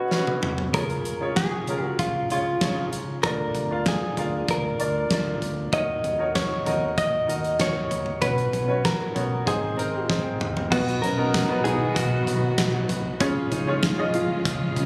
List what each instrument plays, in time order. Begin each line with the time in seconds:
Already playing: grand piano B2 B3 C#4 F#4 B4 C#5 D#5, clean electric guitar F#4
0.11 grand piano C#4 F#4 B4 C#5, snare
0.27 high tom
0.43 mid tom
0.58 floor tom
0.74 fingered electric bass C#2, grand piano C#3 C#4 F4 G#4 C#5, clean electric guitar A#4, kick, closed hi-hat
0.90 closed hi-hat
1.04 fingered electric bass C#2, closed hi-hat
1.21 grand piano C#4 F4 G#4 C#5
1.36 clean electric guitar G#4, kick, snare, closed hi-hat
1.67 fingered electric bass C#2, grand piano C#4 F4 G#4 A#4, closed hi-hat
1.85 clean electric guitar F#4
1.99 fingered electric bass C#2, clean electric guitar F4, kick, closed hi-hat
2.30 fingered electric bass C#2, grand piano C#4 F4 G#4 C#5, clean electric guitar F4, closed hi-hat
2.61 fingered electric bass C#2, grand piano C#4 F4 G#4 C#5, kick, snare, closed hi-hat
2.92 fingered electric bass C#2, closed hi-hat
3.23 fingered electric bass D2, grand piano D3 D4 F4 A#4 D5, clean electric guitar A#4, kick, closed hi-hat
3.55 fingered electric bass D2, closed hi-hat, floor tom
3.71 grand piano D4 F4 A#4 F5
3.86 clean electric guitar G#4, kick, snare, closed hi-hat
4.17 fingered electric bass D2, grand piano D4 F4 A#4 F5, closed hi-hat, floor tom
4.48 fingered electric bass D2, clean electric guitar A#4, kick, closed hi-hat
4.79 fingered electric bass D2, grand piano D4 F4 A#4 D5, closed hi-hat
5.11 fingered electric bass D2, grand piano D4 F4 A#4 D5, kick, snare, closed hi-hat
5.42 fingered electric bass D2, closed hi-hat, floor tom
5.73 fingered electric bass D#2, grand piano D#3 D#4 F#4 A#4 C#5, clean electric guitar D#5, kick, closed hi-hat
6.04 fingered electric bass D#2, closed hi-hat, floor tom
6.19 grand piano D#4 F#4 A#4 C#5
6.35 clean electric guitar C#5, kick, snare, closed hi-hat
6.65 fingered electric bass D#2, grand piano D#4 F#4 A#4 D#5, closed hi-hat, floor tom
6.98 fingered electric bass D#2, clean electric guitar D#5, kick, closed hi-hat
7.27 fingered electric bass D#2, grand piano D#4 F#4 A#4 D#5, closed hi-hat
7.45 closed hi-hat
7.59 fingered electric bass D#2, grand piano D#4 F#4 A#4 C#5, clean electric guitar C#5, kick, snare, closed hi-hat
7.91 fingered electric bass D#2, closed hi-hat, floor tom
8.06 floor tom
8.21 fingered electric bass B1, grand piano B2 C#4 F#4 B4 C#5, clean electric guitar B4, kick, closed hi-hat
8.38 closed hi-hat
8.53 fingered electric bass B1, closed hi-hat, floor tom
8.68 grand piano C#4 F#4 B4 C#5
8.85 clean electric guitar A#4, kick, snare, closed hi-hat
9.14 fingered electric bass B1, grand piano B3 C#4 F#4 C#5, closed hi-hat, floor tom
9.46 fingered electric bass G#1, grand piano G#2 C4 D#4 G#4 C5, clean electric guitar G#4, kick, closed hi-hat
9.77 fingered electric bass G#1, grand piano C4 D#4 G#4 A#4, closed hi-hat
10.09 fingered electric bass G#1, grand piano C4 D#4 G#4 C5, kick, snare
10.40 fingered electric bass G#1, mid tom
10.57 floor tom
10.71 fingered electric bass B1, grand piano B2 B3 D#4 F#4 B4, string section D#3 F#3 B3 F#4, steel-string acoustic guitar B3, clean electric guitar F#4, kick, crash
10.88 closed hi-hat
11.02 fingered electric bass B1, steel-string acoustic guitar C#4, clean electric guitar A#4, closed hi-hat
11.17 grand piano B3 D#4 F#4 A#4
11.34 kick, snare, closed hi-hat
11.49 grand piano B3 D#4 F#4 B4
11.64 fingered electric bass B1, steel-string acoustic guitar D#4, clean electric guitar G#4, closed hi-hat, floor tom
11.95 fingered electric bass B1, clean electric guitar F#4, kick, closed hi-hat
12.26 fingered electric bass B2, closed hi-hat, floor tom
12.58 fingered electric bass B1, kick, snare, closed hi-hat
12.89 fingered electric bass C2, closed hi-hat, floor tom
13.19 fingered electric bass C#2, string section C#3 F3 G#3 F4, grand piano C#3 C#4 F4 G#4 C#5, steel-string acoustic guitar C#4, kick, closed hi-hat
13.52 fingered electric bass C#2, steel-string acoustic guitar D#4, closed hi-hat, floor tom
13.67 grand piano C#4 F4 G#4 C#5
13.83 kick, snare, closed hi-hat
13.98 grand piano C#4 F4 G#4 D#5
14.13 fingered electric bass C#2, steel-string acoustic guitar F4, closed hi-hat, floor tom
14.45 fingered electric bass C#2, kick, closed hi-hat
14.76 fingered electric bass C#3, closed hi-hat, floor tom